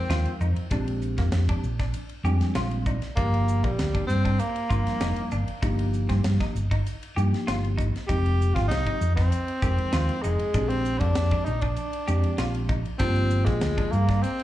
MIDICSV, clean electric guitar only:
0, 0, Header, 1, 2, 480
1, 0, Start_track
1, 0, Tempo, 614754
1, 557, Time_signature, 4, 2, 24, 8
1, 11269, End_track
2, 0, Start_track
2, 0, Title_t, "Clean electric guitar"
2, 0, Program_c, 0, 27
2, 76, Note_on_c, 0, 65, 75
2, 249, Note_off_c, 0, 65, 0
2, 320, Note_on_c, 0, 63, 63
2, 492, Note_off_c, 0, 63, 0
2, 561, Note_on_c, 0, 62, 75
2, 732, Note_off_c, 0, 62, 0
2, 926, Note_on_c, 0, 58, 65
2, 1098, Note_off_c, 0, 58, 0
2, 1164, Note_on_c, 0, 62, 61
2, 1336, Note_off_c, 0, 62, 0
2, 1402, Note_on_c, 0, 62, 65
2, 1575, Note_off_c, 0, 62, 0
2, 1754, Note_on_c, 0, 67, 67
2, 1928, Note_off_c, 0, 67, 0
2, 1996, Note_on_c, 0, 65, 74
2, 2169, Note_off_c, 0, 65, 0
2, 2237, Note_on_c, 0, 63, 65
2, 2410, Note_off_c, 0, 63, 0
2, 2477, Note_on_c, 0, 62, 72
2, 2650, Note_off_c, 0, 62, 0
2, 2845, Note_on_c, 0, 58, 62
2, 3016, Note_off_c, 0, 58, 0
2, 3081, Note_on_c, 0, 62, 59
2, 3254, Note_off_c, 0, 62, 0
2, 3317, Note_on_c, 0, 62, 72
2, 3491, Note_off_c, 0, 62, 0
2, 3666, Note_on_c, 0, 65, 65
2, 3842, Note_off_c, 0, 65, 0
2, 3912, Note_on_c, 0, 63, 74
2, 4085, Note_off_c, 0, 63, 0
2, 4153, Note_on_c, 0, 62, 58
2, 4326, Note_off_c, 0, 62, 0
2, 4391, Note_on_c, 0, 63, 82
2, 4565, Note_off_c, 0, 63, 0
2, 4755, Note_on_c, 0, 60, 64
2, 4930, Note_off_c, 0, 60, 0
2, 5001, Note_on_c, 0, 63, 60
2, 5173, Note_off_c, 0, 63, 0
2, 5241, Note_on_c, 0, 63, 73
2, 5413, Note_off_c, 0, 63, 0
2, 5594, Note_on_c, 0, 67, 69
2, 5766, Note_off_c, 0, 67, 0
2, 5835, Note_on_c, 0, 65, 75
2, 6006, Note_off_c, 0, 65, 0
2, 6071, Note_on_c, 0, 63, 62
2, 6244, Note_off_c, 0, 63, 0
2, 6317, Note_on_c, 0, 63, 76
2, 6488, Note_off_c, 0, 63, 0
2, 6681, Note_on_c, 0, 60, 59
2, 6852, Note_off_c, 0, 60, 0
2, 6925, Note_on_c, 0, 63, 59
2, 7095, Note_off_c, 0, 63, 0
2, 7160, Note_on_c, 0, 63, 64
2, 7331, Note_off_c, 0, 63, 0
2, 7514, Note_on_c, 0, 67, 63
2, 7685, Note_off_c, 0, 67, 0
2, 7757, Note_on_c, 0, 65, 68
2, 7928, Note_off_c, 0, 65, 0
2, 7997, Note_on_c, 0, 63, 59
2, 8167, Note_off_c, 0, 63, 0
2, 8235, Note_on_c, 0, 62, 71
2, 8406, Note_off_c, 0, 62, 0
2, 8599, Note_on_c, 0, 58, 66
2, 8771, Note_off_c, 0, 58, 0
2, 8840, Note_on_c, 0, 62, 60
2, 9012, Note_off_c, 0, 62, 0
2, 9078, Note_on_c, 0, 62, 67
2, 9250, Note_off_c, 0, 62, 0
2, 9428, Note_on_c, 0, 67, 66
2, 9602, Note_off_c, 0, 67, 0
2, 9671, Note_on_c, 0, 65, 80
2, 9844, Note_off_c, 0, 65, 0
2, 9908, Note_on_c, 0, 63, 72
2, 10082, Note_off_c, 0, 63, 0
2, 10146, Note_on_c, 0, 62, 78
2, 10321, Note_off_c, 0, 62, 0
2, 10512, Note_on_c, 0, 58, 63
2, 10687, Note_off_c, 0, 58, 0
2, 10756, Note_on_c, 0, 62, 62
2, 10929, Note_off_c, 0, 62, 0
2, 11001, Note_on_c, 0, 62, 70
2, 11173, Note_off_c, 0, 62, 0
2, 11269, End_track
0, 0, End_of_file